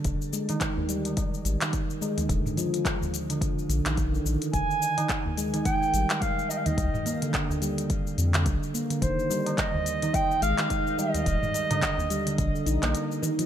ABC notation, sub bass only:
X:1
M:4/4
L:1/16
Q:"Swing 16ths" 1/4=107
K:Fdor
V:1 name="Sub bass" clef=bass
F,,, z8 z A,,, z4 z | E,,, z8 z B,,, B,,,3 B,,, z | F,,, z8 z A,,, z4 z | C,, z8 z F,,2 B,,, z3 |
F,,, z8 z A,,, z4 z | E,,, z6 z B,,, z B,,, B,,, z4 |]